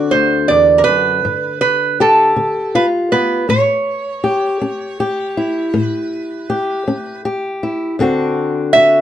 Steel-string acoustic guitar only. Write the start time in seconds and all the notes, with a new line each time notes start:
Already playing: D3 C4 D4 F#4
0.12 D2
0.50 E2
0.87 F#2
1.25 G2
2.00 G4
2.36 D3
2.75 F4
3.12 B3
3.49 A2
4.24 G4
4.61 C#4
5.00 G4
5.37 E4
5.74 A2
6.50 G4
6.88 C#4
7.25 G4
7.63 E4
7.99 D2 D3 C4 D4 F#4
8.75 F#4